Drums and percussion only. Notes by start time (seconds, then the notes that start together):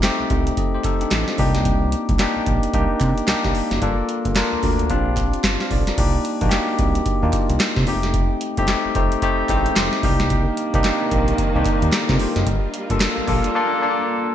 0.03 snare, clap, closed hi-hat
0.30 kick, closed hi-hat
0.47 closed hi-hat
0.57 kick, closed hi-hat
0.84 kick, clap, closed hi-hat
1.01 closed hi-hat
1.11 snare, clap, closed hi-hat
1.28 snare
1.38 kick, open hi-hat
1.55 snare, closed hi-hat
1.65 kick, closed hi-hat
1.92 closed hi-hat
2.09 kick, closed hi-hat
2.19 snare, clap, closed hi-hat
2.46 kick, closed hi-hat
2.63 closed hi-hat
2.74 kick, closed hi-hat
3.01 kick, clap, closed hi-hat
3.18 closed hi-hat
3.28 snare, clap, closed hi-hat
3.44 kick, snare
3.55 open hi-hat
3.71 snare, closed hi-hat
3.82 kick, closed hi-hat
4.09 closed hi-hat
4.25 kick, closed hi-hat
4.35 snare, clap, closed hi-hat
4.63 kick, open hi-hat
4.79 closed hi-hat
4.90 kick, closed hi-hat
5.17 kick, clap, closed hi-hat
5.33 closed hi-hat
5.44 snare, clap, closed hi-hat
5.60 snare
5.71 kick, open hi-hat
5.87 snare, closed hi-hat
5.98 kick, closed hi-hat, crash
6.25 closed hi-hat
6.41 kick, closed hi-hat
6.51 snare, clap, closed hi-hat
6.79 kick, closed hi-hat
6.95 closed hi-hat
7.06 kick, closed hi-hat
7.33 kick, clap, closed hi-hat
7.50 closed hi-hat
7.60 snare, clap, closed hi-hat
7.76 kick, snare
7.87 open hi-hat
8.03 snare, closed hi-hat
8.14 kick, closed hi-hat
8.41 closed hi-hat
8.57 kick, closed hi-hat
8.68 snare, clap, closed hi-hat
8.95 kick, closed hi-hat
9.12 closed hi-hat
9.22 kick, closed hi-hat
9.49 kick, clap, closed hi-hat
9.66 closed hi-hat
9.76 snare, clap, closed hi-hat
9.93 snare
10.03 kick, open hi-hat
10.20 snare, closed hi-hat
10.30 kick, closed hi-hat
10.57 closed hi-hat
10.74 kick, closed hi-hat
10.84 snare, clap, closed hi-hat
11.11 kick, closed hi-hat
11.28 closed hi-hat
11.38 kick, closed hi-hat
11.65 kick, clap, closed hi-hat
11.82 closed hi-hat
11.92 snare, clap, closed hi-hat
12.09 kick, snare
12.19 open hi-hat
12.36 snare, closed hi-hat
12.46 kick, closed hi-hat
12.74 closed hi-hat
12.90 kick, closed hi-hat
13.00 snare, clap, closed hi-hat
13.27 kick, open hi-hat
13.44 closed hi-hat